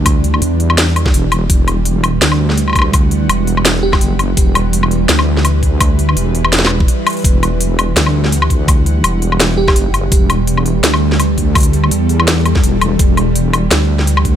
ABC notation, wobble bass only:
X:1
M:4/4
L:1/8
Q:"Swing 16ths" 1/4=167
K:Em
V:1 name="Wobble bass" clef=bass
D,,2 E,,4 E,,,2 | E,,,4 D,,4- | D,,2 E,,,4 F,,,2 | E,,,4 D,,4- |
D,,2 E,,,4 z2 | E,,,4 D,,4- | D,,2 E,,,4 F,,,2 | E,,,4 D,,4- |
D,,2 E,,4 E,,,2 | E,,,4 D,,4 |]